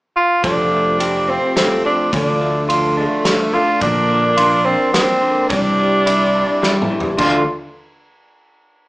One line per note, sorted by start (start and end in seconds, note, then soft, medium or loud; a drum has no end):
0.16 0.42 F4 medium
0.42 1.37 F1 medium
0.42 1.05 F3 medium
0.42 0.98 A3 medium
0.42 0.99 C4 medium
0.42 1.31 D4 medium
0.42 1.01 F4 medium
0.42 1.00 G4 medium
0.42 kick medium
0.42 ride medium
0.72 1.55 A3 medium
0.98 1.27 A3 medium
0.98 1.28 C4 medium
0.98 1.28 F4 medium
0.98 1.26 G4 medium
0.98 ride medium
1.27 1.57 C4 medium
1.27 1.56 C4 soft
1.27 1.57 F4 soft
1.27 1.56 G4 soft
1.55 1.84 A3 medium
1.55 1.85 C4 medium
1.55 1.83 C4 medium
1.55 1.85 F4 medium
1.55 1.83 G4 medium
1.55 snare medium
1.55 ride medium
1.84 2.12 F3 medium
1.84 2.13 C4 soft
1.84 2.11 D4 medium
1.84 2.12 F4 soft
1.84 2.12 G4 soft
2.12 3.06 D2 loud
2.12 2.68 D3 medium
2.12 2.67 F3 medium
2.12 2.68 D4 medium
2.12 2.65 D4 medium
2.12 2.69 F4 medium
2.12 2.69 A4 medium
2.12 kick loud
2.12 ride medium
2.41 3.23 A3 medium
2.67 3.22 F3 medium
2.67 3.24 D4 medium
2.67 3.24 F4 medium
2.67 3.25 A4 medium
2.67 ride medium
2.97 3.55 A3 medium
2.97 4.65 D4 medium
3.23 3.52 F3 medium
3.23 3.81 A3 medium
3.23 3.53 D4 medium
3.23 3.53 F4 medium
3.23 3.52 A4 medium
3.23 snare medium
3.23 ride medium
3.53 3.81 D3 medium
3.53 3.81 D4 soft
3.53 3.81 F4 medium
3.53 3.82 F4 soft
3.53 3.81 A4 soft
3.80 4.75 A#1 medium
3.80 4.37 A#2 medium
3.80 4.37 D3 medium
3.80 4.35 F3 medium
3.80 4.37 A#3 medium
3.80 4.39 D4 medium
3.80 4.67 D4 loud
3.80 4.38 A#4 medium
3.80 kick loud
3.80 ride medium
4.09 4.93 A#3 medium
4.37 4.91 F3 medium
4.37 4.92 A#3 medium
4.37 4.94 D4 medium
4.37 5.50 F4 medium
4.37 4.94 A#4 medium
4.37 ride medium
4.65 4.92 C4 medium
4.65 5.53 D4 medium
4.93 5.49 F3 medium
4.93 5.49 A#3 medium
4.93 5.46 C4 medium
4.93 5.50 D4 medium
4.93 5.50 A#4 medium
4.93 snare medium
4.93 ride medium
5.22 5.50 D3 medium
5.49 6.43 C2 medium
5.49 6.06 C3 medium
5.49 6.05 G3 medium
5.49 6.86 D4 medium
5.49 6.06 D4 medium
5.49 6.06 E4 medium
5.49 6.07 G4 medium
5.49 kick loud
5.49 ride medium
5.78 6.61 G3 medium
6.06 6.61 G3 medium
6.06 6.62 D4 medium
6.06 6.63 E4 medium
6.06 6.64 G4 medium
6.06 ride medium
6.35 7.17 D4 medium
6.62 7.19 G3 medium
6.62 7.18 D4 medium
6.62 7.20 E4 medium
6.62 7.20 G4 medium
6.62 snare medium
6.82 mid tom medium
6.90 7.17 E3 medium
7.00 floor tom loud
7.18 7.45 D2 medium
7.18 7.42 D3 medium
7.18 7.42 F3 medium
7.18 7.41 A3 medium
7.18 7.42 D4 medium
7.18 7.45 F4 medium
7.18 7.43 F4 medium
7.18 7.43 A4 medium
7.18 kick medium
7.18 crash medium